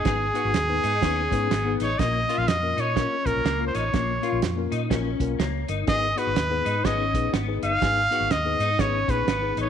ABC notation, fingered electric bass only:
X:1
M:4/4
L:1/16
Q:"Swing" 1/4=124
K:G#dor
V:1 name="Fingered electric bass" clef=bass
G,,,2 z G,,, D,,2 G,,2 D,,2 G,,2 G,,,2 =A,,,2 | A,,,2 z A,,, E,,2 A,,3 z A,,, B,,, C,,2 =A,,,2 | A,,,2 z A,,, E,,2 A,,2 A,,,2 B,,,2 C,,2 =G,,,2 | G,,,2 z G,,, D,,2 G,,2 G,,,2 A,,,2 G,,,2 =G,,,2 |
G,,,2 z G,,, D,,2 G,,2 G,,,2 A,,,2 G,,,2 =A,,,2 |]